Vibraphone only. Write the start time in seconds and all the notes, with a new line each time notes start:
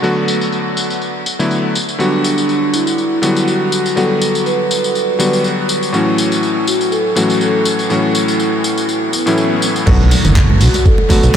2.00 D4
2.74 E4
3.47 F#4
3.96 A4
4.45 B4
5.94 E4
6.68 F#4
6.91 A4
7.17 F#4
7.41 A4
7.90 E4
10.61 F#4
10.86 A4